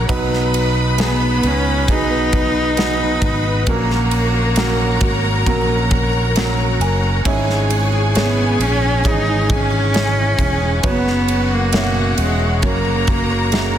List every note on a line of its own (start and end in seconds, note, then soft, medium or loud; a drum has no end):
0.00 0.11 C#3 medium
0.00 0.09 F#3 medium
0.00 1.79 F#3 medium
0.00 0.11 A#3 medium
0.00 0.11 C#4 medium
0.00 0.18 C#4 medium
0.00 0.10 F#4 medium
0.00 0.52 F#4 medium
0.00 0.10 A#4 loud
0.00 0.18 A#4 medium
0.00 0.11 C#5 medium
0.00 5.43 F#5 medium
0.09 1.86 B2 medium
0.09 1.39 B2 medium
0.09 0.94 F#3 loud
0.09 0.94 B3 medium
0.09 0.94 D#4 loud
0.09 0.94 F#4 loud
0.09 3.64 B4 medium
0.09 0.94 B4 loud
0.09 2.74 B4 medium
0.09 3.63 D#5 medium
0.09 2.74 B5 medium
0.09 3.64 D#6 medium
0.09 kick loud
0.09 ride medium
0.30 1.19 B3 medium
0.30 snare soft
0.53 0.97 D#4 medium
0.53 ride medium
0.75 2.53 B4 medium
0.98 1.83 F#3 medium
0.98 1.83 B3 medium
0.98 1.42 D#4 medium
0.98 1.84 D#4 medium
0.98 1.84 F#4 medium
0.98 1.84 G#4 medium
0.98 snare loud
0.98 ride medium
1.03 1.49 B3 medium
1.20 1.63 B3 medium
1.43 1.88 C#2 medium
1.43 1.93 C#4 loud
1.43 2.31 D#4 medium
1.43 ride medium
1.65 2.08 B3 medium
1.88 3.18 B1 loud
1.88 3.76 B2 medium
1.88 2.73 F#3 medium
1.88 2.73 B3 medium
1.88 2.74 D#4 medium
1.88 3.71 D#4 loud
1.88 2.74 F#4 medium
1.88 2.74 G#4 medium
1.88 kick medium
1.88 ride medium
2.10 2.98 B3 medium
2.32 2.76 D#4 medium
2.32 kick loud
2.32 ride medium
2.54 3.76 B4 medium
2.77 3.63 F#3 medium
2.77 3.63 B3 medium
2.77 3.21 D#4 medium
2.77 3.63 D#4 medium
2.77 3.63 F#4 medium
2.77 3.65 B4 medium
2.77 3.63 B4 medium
2.77 3.65 B5 medium
2.77 snare loud
2.77 ride medium
2.99 3.43 B3 medium
3.22 3.64 G#1 medium
3.22 3.76 D#4 medium
3.22 kick medium
3.22 ride medium
3.44 3.76 B3 medium
3.66 4.97 A#1 loud
3.66 4.98 A#2 medium
3.66 4.53 F#3 medium
3.66 5.45 A#3 medium
3.66 4.53 A#3 medium
3.66 5.47 A#3 medium
3.66 4.53 C#4 medium
3.66 4.53 F#4 medium
3.66 7.22 A#4 medium
3.66 4.53 A#4 loud
3.66 13.78 C#5 medium
3.66 7.22 A#5 loud
3.66 13.78 C#6 medium
3.66 kick loud
3.66 ride medium
3.89 4.79 C#4 medium
3.89 snare soft
4.11 4.56 F#4 medium
4.11 ride medium
4.34 6.12 A#4 medium
4.56 5.42 F#3 medium
4.56 5.42 A#3 medium
4.56 5.42 C#4 medium
4.56 5.00 F#4 medium
4.56 5.42 F#4 medium
4.56 5.42 A#4 medium
4.56 snare loud
4.56 ride medium
4.80 5.24 C#4 medium
5.01 5.43 G#1 loud
5.01 5.90 F#4 medium
5.01 kick medium
5.01 ride medium
5.24 5.68 C#4 medium
5.46 6.77 A#1 loud
5.46 6.31 F#3 medium
5.46 7.34 A#3 medium
5.46 6.32 A#3 medium
5.46 6.32 C#4 medium
5.46 6.32 F#4 medium
5.46 6.32 A#4 loud
5.46 10.79 F#5 medium
5.46 kick medium
5.46 ride medium
5.69 6.58 C#4 medium
5.91 6.34 F#4 medium
5.91 kick medium
5.91 ride medium
6.13 7.34 A#4 medium
6.35 7.21 F#3 medium
6.35 7.21 A#3 medium
6.35 7.21 C#4 medium
6.35 6.79 F#4 medium
6.35 7.22 F#4 medium
6.35 7.21 A#4 medium
6.35 6.78 C#5 medium
6.35 snare loud
6.35 ride medium
6.58 7.03 C#4 medium
6.80 7.22 F#1 medium
6.80 7.34 F#4 medium
6.80 7.23 G#5 medium
6.80 ride medium
7.03 7.47 C#4 medium
7.25 8.56 G#1 loud
7.25 9.02 G#2 medium
7.25 8.56 G#2 medium
7.25 8.11 G#3 loud
7.25 8.11 C#4 loud
7.25 8.11 E4 loud
7.25 8.11 G#4 loud
7.25 10.80 G#4 medium
7.25 8.11 C#5 loud
7.25 10.80 G#5 medium
7.25 kick loud
7.25 ride medium
7.47 8.37 C#4 medium
7.47 snare soft
7.70 8.14 E4 medium
7.70 ride medium
7.92 9.70 G#4 medium
8.15 9.00 G#3 medium
8.15 8.64 B3 medium
8.15 9.00 C#4 medium
8.15 8.60 E4 medium
8.15 9.00 E4 medium
8.15 9.00 G#4 medium
8.15 9.01 C#5 medium
8.15 snare loud
8.15 ride medium
8.37 8.81 C#4 medium
8.59 9.01 A#1 medium
8.59 9.08 C#4 loud
8.59 ride medium
8.82 9.26 C#4 medium
9.04 10.35 G#1 loud
9.04 10.92 G#2 medium
9.04 9.90 E3 medium
9.04 9.90 G#3 medium
9.04 9.90 C#4 medium
9.04 9.44 D#4 loud
9.04 9.90 G#4 medium
9.04 9.90 C#5 medium
9.04 kick medium
9.04 ride medium
9.26 10.15 C#4 medium
9.44 9.54 D#4 medium
9.50 10.85 C#4 loud
9.50 9.92 E4 medium
9.50 kick medium
9.50 ride medium
9.71 10.92 G#4 medium
9.93 10.79 G#3 medium
9.93 10.79 C#4 medium
9.93 10.36 E4 medium
9.93 10.79 E4 medium
9.93 10.79 G#4 medium
9.93 10.80 C#5 medium
9.93 snare loud
9.93 ride medium
10.15 10.60 C#4 medium
10.38 10.80 E1 medium
10.38 10.92 E4 medium
10.38 kick medium
10.38 ride medium
10.60 11.05 C#4 medium
10.83 12.14 F#1 loud
10.83 12.14 C#3 medium
10.83 12.62 F#3 medium
10.83 11.68 B3 medium
10.83 11.69 C#4 medium
10.83 12.61 F#4 medium
10.83 12.59 F#4 medium
10.83 11.69 F#4 medium
10.83 11.69 B4 medium
10.83 11.69 C#5 loud
10.83 12.59 F#5 medium
10.83 13.78 F#5 medium
10.83 kick loud
10.83 ride medium
10.87 11.55 B3 loud
11.05 11.94 C#4 medium
11.05 snare soft
11.28 11.72 F#4 medium
11.28 ride medium
11.54 12.19 A#3 medium
11.73 12.58 B2 medium
11.73 12.58 C#4 medium
11.73 12.17 F#4 medium
11.73 12.58 F#4 medium
11.73 12.59 C#5 medium
11.73 12.59 E5 medium
11.73 snare loud
11.73 ride medium
11.95 12.39 C#4 medium
12.17 12.63 E1 medium
12.17 12.68 G#3 medium
12.17 13.07 F#4 medium
12.17 ride medium
12.39 12.71 C#4 medium
12.62 13.78 F#1 loud
12.62 13.78 C#3 medium
12.62 13.78 F#3 medium
12.62 13.48 A#3 medium
12.62 13.48 C#4 medium
12.62 13.48 F#4 medium
12.62 13.78 A#4 medium
12.62 13.48 A#4 medium
12.62 13.48 C#5 medium
12.62 13.78 A#5 medium
12.62 kick medium
12.62 ride medium
12.66 13.78 A#3 medium
12.85 13.74 C#4 medium
13.07 13.52 F#4 medium
13.07 kick medium
13.07 ride medium
13.30 13.78 A#4 medium
13.51 13.78 G#3 medium
13.51 13.78 A#3 medium
13.51 13.78 C#4 medium
13.51 13.78 F#4 medium
13.51 13.78 A#4 medium
13.51 13.78 E5 medium
13.51 snare loud
13.51 ride medium